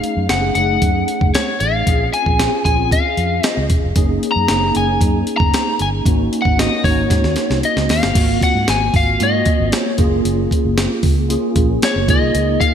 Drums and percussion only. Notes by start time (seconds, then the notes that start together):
0.04 closed hi-hat
0.29 snare, closed hi-hat
0.55 closed hi-hat
0.82 kick, closed hi-hat
1.08 closed hi-hat
1.21 kick
1.35 snare, closed hi-hat
1.60 closed hi-hat
1.87 kick, closed hi-hat
2.14 closed hi-hat
2.26 kick
2.40 snare, closed hi-hat
2.65 kick, closed hi-hat
2.91 kick, closed hi-hat
3.17 closed hi-hat
3.43 snare, closed hi-hat
3.70 kick, closed hi-hat
3.96 kick, closed hi-hat
4.23 closed hi-hat
4.48 snare, closed hi-hat
4.75 closed hi-hat
5.01 kick, closed hi-hat
5.27 closed hi-hat
5.40 kick
5.54 snare, closed hi-hat
5.79 closed hi-hat
6.06 kick, closed hi-hat
6.33 closed hi-hat
6.45 kick
6.59 snare, closed hi-hat
6.84 kick, open hi-hat
7.10 kick, snare, closed hi-hat
7.24 snare
7.36 snare, closed hi-hat
7.51 snare
7.63 closed hi-hat
7.77 snare
7.89 snare, open hi-hat
8.03 snare
8.15 kick, closed hi-hat, crash
8.41 kick, closed hi-hat
8.68 snare, closed hi-hat
8.94 kick, open hi-hat
9.20 closed hi-hat
9.46 kick, closed hi-hat
9.72 snare, closed hi-hat
9.98 kick, closed hi-hat
10.25 closed hi-hat
10.51 kick, closed hi-hat
10.78 snare, closed hi-hat
11.03 kick, open hi-hat
11.30 closed hi-hat
11.56 kick, closed hi-hat
11.82 snare, closed hi-hat
12.08 kick, closed hi-hat
12.35 closed hi-hat
12.61 kick, closed hi-hat